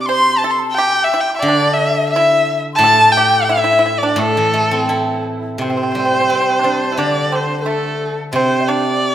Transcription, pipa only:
0.09 0.40 C5 medium
0.44 0.75 A4 medium
0.78 1.09 G4 medium
1.14 1.44 E4 medium
1.48 2.11 D4 medium
2.16 2.62 E4 medium
2.84 3.14 A4 medium
3.17 3.48 G4 medium
3.49 3.56 E4 medium
3.57 3.63 E4 medium
3.64 3.70 E4 medium
3.73 3.78 E4 medium
3.79 3.85 E4 medium
3.86 3.92 E4 medium
4.03 4.18 D4 medium
4.18 4.71 A3 medium
4.71 4.83 G#3 medium
4.83 5.20 G3 medium
5.62 5.67 C4 medium
5.70 5.75 C4 soft
5.77 5.82 C4 soft
5.83 5.89 C4 soft
5.92 5.97 C4 soft
5.99 6.04 C4 soft
6.05 6.11 C4 soft
6.14 6.19 C4 soft
6.21 6.27 C4 soft
6.29 6.34 C4 soft
6.35 6.40 C4 soft
6.41 6.48 C4 soft
6.50 6.56 C4 soft
6.59 6.63 D4 soft
6.63 6.89 C4 medium
6.92 6.98 E4 soft
6.99 7.30 D4 medium
7.32 7.64 C4 medium
7.66 8.13 A3 medium
8.36 8.67 C4 medium
8.69 9.15 D4 medium

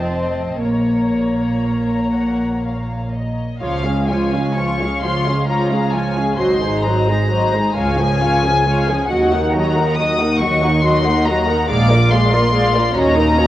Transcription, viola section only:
0.00 0.62 C4 medium
0.63 3.08 A#3 medium
3.62 3.84 F3 medium
3.62 3.84 F4 medium
3.85 4.09 G#3 medium
3.85 4.09 C#4 medium
4.09 4.33 F3 medium
4.09 4.33 F4 medium
4.34 4.57 G#3 medium
4.34 4.57 C#4 medium
4.58 4.79 F3 medium
4.58 4.79 F4 medium
4.80 5.03 G#3 medium
4.80 5.03 C#4 medium
5.03 5.26 F3 medium
5.03 5.26 F4 medium
5.27 5.49 G#3 medium
5.27 5.49 C#4 medium
5.48 5.69 F3 medium
5.48 5.70 F4 medium
5.71 5.93 G#3 medium
5.71 5.94 C#4 medium
5.94 6.16 F3 medium
5.94 6.16 F4 medium
6.17 6.39 G#3 medium
6.17 6.39 C#4 medium
6.39 6.60 F#3 medium
6.39 6.60 F#4 medium
6.64 6.85 G#3 medium
6.64 6.85 D#4 medium
6.85 7.08 F#3 medium
6.85 7.08 F#4 medium
7.08 7.30 G#3 medium
7.08 7.30 D#4 medium
7.29 7.51 F#3 medium
7.29 7.51 F#4 medium
7.54 7.75 G#3 medium
7.54 7.76 D#4 medium
7.75 7.97 G#3 medium
7.75 7.97 F4 medium
7.98 8.21 F3 medium
7.98 8.21 C#4 medium
8.22 8.44 G#3 medium
8.22 8.44 F4 medium
8.44 8.66 F3 medium
8.44 8.66 C#4 medium
8.67 8.87 G#3 medium
8.67 8.87 F4 medium
8.90 9.11 F3 medium
8.90 9.11 C#4 medium
9.11 9.31 F#3 medium
9.11 9.31 F#4 medium
9.34 9.55 A#3 medium
9.34 9.54 D#4 medium
9.56 9.76 F#3 medium
9.56 9.76 F#4 medium
9.77 9.97 A#3 medium
9.77 9.98 D#4 medium
9.99 10.18 F#3 medium
9.99 10.17 F#4 medium
10.20 10.40 A#3 medium
10.20 10.40 D#4 medium
10.41 10.61 F#3 medium
10.41 10.61 F#4 medium
10.63 10.83 A#3 medium
10.63 10.83 D#4 medium
10.84 11.04 F#3 medium
10.84 11.03 F#4 medium
11.05 11.27 A#3 medium
11.05 11.26 D#4 medium
11.26 11.48 F#3 medium
11.26 11.48 F#4 medium
11.48 11.70 A#3 medium
11.48 11.70 D#4 medium
11.70 11.90 G#3 medium
11.70 11.89 G#4 medium
11.91 12.12 A#3 medium
11.91 12.12 F4 medium
12.12 12.33 G#3 medium
12.12 12.33 G#4 medium
12.33 12.53 A#3 medium
12.33 12.53 F4 medium
12.54 12.73 G#3 medium
12.54 12.73 G#4 medium
12.74 12.95 A#3 medium
12.74 12.95 F4 medium
12.94 13.14 C#4 medium
12.94 13.14 F#4 medium
13.15 13.36 A#3 medium
13.15 13.36 D#4 medium
13.36 13.47 C#4 medium
13.36 13.47 F#4 medium

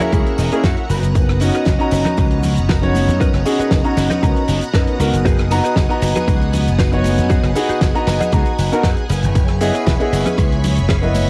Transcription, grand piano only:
0.13 0.49 A#3 medium
0.13 0.49 C#4 medium
0.13 0.49 E4 medium
0.13 0.49 G#4 medium
0.52 0.65 A#3 medium
0.52 0.65 C#4 medium
0.52 0.65 E4 medium
0.52 0.65 G#4 loud
1.41 1.77 C#4 loud
1.41 1.77 D#4 medium
1.41 1.77 F#4 medium
1.79 2.79 C#4 loud
1.79 2.79 D#4 medium
1.79 2.79 F#4 medium
1.79 2.80 A#5 loud
2.82 3.43 C#4 medium
2.82 3.43 D#4 medium
2.82 3.43 F#4 medium
2.82 3.44 C#5 medium
3.45 3.81 C#4 loud
3.45 3.82 D#4 medium
3.45 3.82 F#4 medium
3.45 3.82 G#4 loud
3.84 4.20 C#4 loud
3.84 4.20 D#4 medium
3.84 4.20 F#4 medium
3.84 4.20 A#5 loud
4.22 4.59 C#4 medium
4.22 4.59 D#4 medium
4.22 4.59 F#4 medium
4.22 4.59 A#5 medium
4.73 4.96 C#4 medium
4.73 4.97 D#4 medium
4.73 4.97 F#4 medium
4.73 4.97 B4 medium
4.99 5.48 B3 medium
4.99 5.48 D#4 medium
4.99 5.48 F#4 medium
4.99 5.48 A#4 medium
5.51 5.87 B3 loud
5.51 5.87 D#4 medium
5.51 5.87 F#4 medium
5.51 5.87 A#5 loud
5.89 6.89 B3 loud
5.89 6.89 D#4 medium
5.89 6.90 F#4 medium
5.89 6.90 A#5 loud
6.92 7.53 B3 medium
6.92 7.53 D#4 medium
6.92 7.53 F#4 medium
6.92 7.54 C#5 loud
7.55 7.92 B3 medium
7.55 7.92 D#4 medium
7.55 7.92 F#4 medium
7.55 7.92 G#4 loud
7.95 8.30 B3 loud
7.95 8.30 D#4 medium
7.95 8.30 F#4 medium
7.95 8.30 A#5 loud
8.33 8.69 B3 medium
8.33 8.69 D#4 medium
8.33 8.70 F#4 medium
8.33 8.70 A#5 medium
8.72 8.85 B3 medium
8.72 8.85 D#4 medium
8.72 8.86 F#4 medium
8.72 8.86 A#4 loud
9.61 9.97 B3 loud
9.61 9.97 E4 medium
9.61 9.97 G#4 loud
9.61 9.97 D#5 medium
9.99 10.99 B3 loud
9.99 11.00 E4 medium
9.99 11.00 G#4 loud
9.99 10.99 D#5 medium
11.02 11.30 B3 medium
11.02 11.30 E4 medium
11.02 11.30 B4 loud
11.02 11.30 D#5 medium

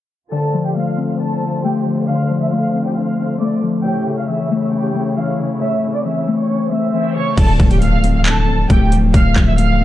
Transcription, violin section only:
0.32 0.63 A4 medium
0.32 0.63 A5 loud
0.65 0.74 G4 medium
0.65 0.73 G5 medium
0.76 1.07 F5 medium
0.76 1.07 F6 medium
1.09 1.17 F5 medium
1.09 1.18 F6 medium
1.20 1.62 A4 medium
1.20 1.61 A5 medium
1.64 1.81 G4 medium
1.64 1.81 G5 medium
2.08 2.39 F5 loud
2.08 2.40 F6 medium
2.41 2.50 E5 medium
2.41 2.50 E6 medium
2.52 2.83 F5 medium
2.52 2.84 F6 medium
2.85 2.94 G4 medium
2.85 2.94 G5 medium
2.96 3.38 F5 medium
2.96 3.38 F6 medium
3.40 3.57 D5 medium
3.40 3.58 D6 medium
3.85 4.16 G4 medium
3.85 4.16 G5 loud
4.18 4.26 F5 medium
4.18 4.27 F6 medium
4.29 4.60 E5 medium
4.29 4.60 E6 medium
4.62 4.70 E5 medium
4.62 4.71 E6 medium
4.73 5.15 G4 medium
4.73 5.14 G5 medium
5.17 5.34 F5 medium
5.17 5.34 F6 medium
5.61 5.92 E5 loud
5.61 5.93 E6 medium
5.94 6.03 D5 medium
5.94 6.03 D6 medium
6.05 6.36 E5 medium
6.05 6.37 E6 medium
6.38 6.69 C#5 medium
6.38 6.70 C#6 medium
6.71 7.13 E5 medium
6.71 7.13 E6 medium
7.15 7.32 C#5 medium
7.15 7.33 C#6 medium
7.37 7.69 A4 medium
7.37 7.69 A5 loud
7.71 7.80 G4 medium
7.71 7.79 G5 medium
7.82 8.13 F5 medium
7.82 8.13 F6 medium
8.15 8.23 F5 medium
8.15 8.24 F6 medium
8.26 8.68 A4 medium
8.26 8.67 A5 medium
8.70 8.87 G4 medium
8.70 8.87 G5 medium
9.14 9.45 F5 loud
9.14 9.46 F6 medium
9.47 9.56 E5 medium
9.47 9.56 E6 medium
9.58 9.84 F5 loud
9.58 9.84 F6 medium

